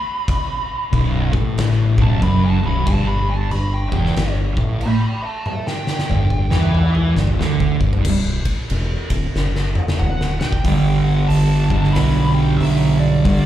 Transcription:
Already playing: B5
0.28 kick, crash
0.92 B0 B1, kick, crash
1.33 A1 A2, kick
1.58 snare, crash
1.98 B0 B1, kick
2.02 A5
2.22 F#1 F#2 B5, kick, crash
2.45 A5
2.62 B0 B1
2.67 B5
2.86 G1 G2 A5, kick, crash
3.08 B5
3.30 A5
3.51 G1 G2 B5, crash
3.74 G5
3.92 E1 E2, kick
4.06 snare
4.16 G1 G2, snare, crash
4.56 A1 A2, kick
4.81 G5 B5, crash
5.02 G5 B5
5.22 E5 A5
5.46 E5 A5, high tom
5.67 G5, snare
5.87 snare
5.99 snare
6.09 G1 G2, mid tom
6.30 kick
6.50 E2 E3, snare
6.63 mid tom
6.75 mid tom
6.95 mid tom
7.15 G1 G2, snare
7.27 mid tom
7.39 D2 D3, snare
7.60 kick
7.80 G1 G2, kick
7.93 floor tom
8.05 B0, kick, crash
8.45 kick, ride
8.70 E1, ride
9.10 D1, kick, ride
9.35 F#1, snare
9.56 snare
9.75 mid tom
9.88 snare
9.99 D1 F#5, mid tom
10.21 snare
10.40 G5, snare
10.52 kick
10.64 G1 G2 D3 G3, kick, open hi-hat
11.02 F#5
11.28 G1 A5, open hi-hat
11.70 G2 D3 G3, kick
11.84 snare
11.93 B1 B5, snare, open hi-hat
12.34 G5
12.58 B1 E5, open hi-hat
12.99 D5
13.25 G1 G2 D3 G3, kick, open hi-hat

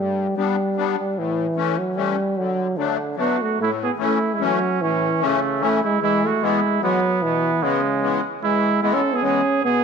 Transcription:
Already playing: G2 G3
0.36 G3 B3 D4
0.76 G3 B3 D4
0.99 G3
1.16 A2 E3
1.56 E3 A3 C#4
1.78 F#3
1.95 E3 G3 A3 C#4
2.37 D3 F#3
2.77 D3 F#3 A3 D4
3.15 F#3 A3 B3 D4
3.20 F#4
3.42 A3 F#4
3.58 A2 A3 E4
3.83 B3 G#4
3.97 E3 A3 C#4
4.03 A3 E4
4.33 G#3 E4
4.39 E3 F#3 A3 C#4
4.44 C#4
4.79 A2 E3 C#4
5.19 E3 A3 C#4
5.24 C#3 A3
5.60 E3 A3 C#4
5.64 E4
5.84 G#3 E4
6.00 E3 G#3 E4
6.24 A3 F#4
6.41 E3 G#3 B3
6.45 E4
6.81 E3 F#3 G#3 B3
7.21 B2 E3 B3
7.61 C#3 E3 G#3 B3
8.01 E3 G#3 B3
8.41 E3 G#3 E4
8.81 E3 G#3 B3 E4
8.94 C#4 A4
9.13 B3 G#4
9.21 E3 G#3 B3 C#4
9.25 G#4
9.62 B2 B3 G#4

